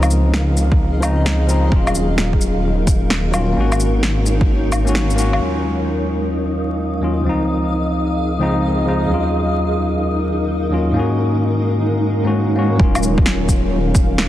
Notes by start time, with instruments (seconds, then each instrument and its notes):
Already playing: detuned saw bass C#2, tine electric piano F3 C4 D#4, ambient pad D#4 A#4 F5
0.03 low woodblock, shaker
0.10 shaker
0.15 ambient pad G#4
0.25 ambient pad D#5
0.34 snare
0.57 shaker
0.72 kick
1.00 tine electric piano F3 C4, low woodblock, shaker
1.05 tine electric piano D#4
1.26 snare
1.46 tine electric piano F3 C4 D#4, shaker
1.68 tine electric piano F#3, ambient pad D#4
1.72 detuned saw bass D#1, tine electric piano C#4, kick
1.76 tine electric piano F4
1.87 ambient pad A#4, low woodblock, shaker
1.95 shaker
2.18 snare
2.33 kick
2.41 shaker
2.87 kick, shaker
3.10 snare
3.31 tine electric piano F#3 C#4 F4, low woodblock, shaker
3.52 ambient pad G#3, tine electric piano A#3
3.57 detuned saw bass G#1, tine electric piano C#4 F#4
3.72 low woodblock, shaker
3.77 ambient pad C#5, shaker
4.03 snare
4.26 shaker
4.41 kick
4.72 low woodblock, shaker
4.85 tine electric piano A#3 C#4 F#4, shaker
4.95 snare
5.10 shaker
5.16 tine electric piano A#3 C#4, shaker
5.20 tine electric piano F#4
5.33 tine electric piano D#2, low woodblock
5.39 tine electric piano F#3 C#4, synth texture D#4 D#5
5.45 tine electric piano F4
5.65 ambient pad F5
7.00 tine electric piano D#2 F#3 C#4
7.04 tine electric piano F4
7.21 tine electric piano C#2 F3
7.26 tine electric piano C4 D#4
7.34 ambient pad G#4
7.80 ambient pad D#5
8.38 tine electric piano C#2 F3 C4
8.43 tine electric piano D#4
8.84 tine electric piano C#2 F3 C4
8.89 tine electric piano D#4
9.06 tine electric piano D#2 F#3
9.11 tine electric piano C#4 F4, ambient pad D#4
9.19 ambient pad A#4
10.70 tine electric piano D#2 F#3 C#4
10.74 tine electric piano F4
10.91 tine electric piano G#2 A#3, ambient pad G#3
10.97 tine electric piano C#4 F#4
11.62 ambient pad C#5
12.24 tine electric piano G#2 A#3 C#4 F#4
12.54 tine electric piano G#2 A#3 C#4
12.59 tine electric piano F#4
12.76 detuned saw bass D#1, tine electric piano F#3, kick
12.80 tine electric piano C#4 F4
12.92 ambient pad F5, low woodblock, shaker
13.03 shaker
13.18 kick
13.26 snare
13.49 kick, shaker
13.95 kick, shaker
14.18 snare